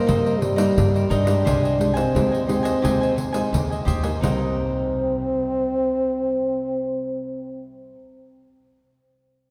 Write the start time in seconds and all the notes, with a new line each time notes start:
Already playing: A#3
0.06 G2 C3 G3 A#3 D#4 A#4 C5 D#5, pandeiro
0.25 A#4 C5 D#5, pandeiro
0.40 G3, muted cavaquinho stroke, pandeiro
0.56 G3 A#3 D#4 A#4 C5 D#5, pandeiro
0.77 G2, pandeiro
0.94 A#4 C5 D#5, pandeiro
1.09 G2 D4 D#4 A#4 C5 D#5, pandeiro
1.25 G#3 G4 A#4 C5 D#5, pandeiro
1.45 C2 C3 G4 C5 D#5 G#5, pandeiro
1.63 C5 D#5 G#5, pandeiro
1.78 G#3 D#4 G4, muted cavaquinho stroke, pandeiro
1.94 C4 C5 D#5 G#5, pandeiro
2.15 D#2 C3 G#3 D#4 G4, pandeiro
2.31 C5 D#5 G#5, pandeiro
2.46 G#3 C4 D#4 G4 C5 D#5 G#5, pandeiro
2.63 C5 D#5 G#5, pandeiro
2.82 D#2 C3 G#3 D#4 G4 C5 D#5 G#5, pandeiro
3.01 C5 D#5 G#5, pandeiro
3.16 muted cavaquinho stroke, pandeiro
3.33 G#3 D#4 C5 D#5 G#5, pandeiro
3.53 D#2 C3, pandeiro
3.70 C5 D#5 G#5, pandeiro
3.85 D#2 G4 C5 D#5 G#5, pandeiro
4.03 A#3 D#4 G4 C5 D#5 G#5, pandeiro
4.18 C3 C4 D#4
4.22 C2 G3 A#4 C5 D#5, pandeiro
4.28 A#3
4.33 D#4